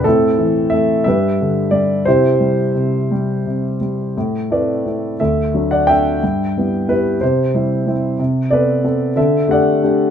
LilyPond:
<<
  \new Staff \with { instrumentName = "Grand piano" } { \time 6/8 \key c \major \tempo 4. = 59 << { a'4 e''8 e''4 d''8 | c''2~ c''8 r8 | \key a \dorian r8 d''4 e''8. fis''16 g''8~ | g''4 b'8 c''4 r8 |
r8 d''4 e''8 fis''4 | } \\ { <c' e'>4. <g' b'>4. | <e' g'>2~ <e' g'>8 r8 | r8 b'4 a'8. d''16 e''8~ | e''4 g'8 g'4 r8 |
r8 b'4 a'8 d''4 | } >> }
  \new Staff \with { instrumentName = "Grand piano" } { \time 6/8 \key c \major a,8 e8 a8 g,8 d8 g8 | c8 g8 c8 g8 c8 g8 | \key a \dorian a,8 <a c' e'>8 <a c' e'>8 d,8 <fis a d'>8 <a d' a'>8 | g,8 <g b e'>8 <g b e'>8 c8 <g c' e'>8 <g c' e'>8 |
c8 <b c' a'>8 <b c' a'>8 d8 <a d' g'>8 <a d' g'>8 | }
>>